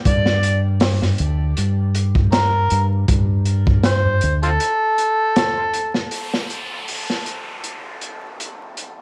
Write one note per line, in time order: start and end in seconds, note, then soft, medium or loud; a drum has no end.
0.05 1.16 G2 loud
0.05 0.58 D5 loud
0.05 kick medium
0.05 closed hi-hat medium
0.26 snare medium
0.43 closed hi-hat medium
0.80 snare loud
0.80 open hi-hat medium
0.80 tabla na medium
1.01 snare soft
1.01 tabla ge medium
1.18 1.53 D2 medium
1.18 closed hi-hat medium
1.57 2.68 G2 medium
1.57 closed hi-hat medium
1.95 closed hi-hat medium
2.15 kick medium
2.15 tabla ge medium
2.32 2.85 A#4 medium
2.32 snare loud
2.32 closed hi-hat medium
2.32 tabla na medium
2.70 3.05 G2 medium
2.70 closed hi-hat medium
3.08 4.19 G2 loud
3.08 kick loud
3.08 closed hi-hat medium
3.46 closed hi-hat medium
3.67 kick medium
3.84 4.37 C5 medium
3.84 snare loud
3.84 closed hi-hat medium
3.84 tabla na medium
4.05 tabla ge medium
4.21 4.57 D2 medium
4.21 closed hi-hat medium
4.43 4.50 C4 medium
4.43 4.50 F4 medium
4.43 5.99 A4 loud
4.43 closed hi-hat soft
4.60 closed hi-hat medium
4.98 closed hi-hat medium
5.36 snare loud
5.36 closed hi-hat medium
5.36 tabla na medium
5.74 closed hi-hat medium
5.95 snare soft
6.11 closed hi-hat medium
6.11 downlifter medium
6.34 snare soft
6.50 closed hi-hat medium
6.88 open hi-hat medium
7.10 snare soft
7.26 closed hi-hat medium
7.64 closed hi-hat medium
8.01 closed hi-hat soft
8.40 closed hi-hat medium
8.77 closed hi-hat medium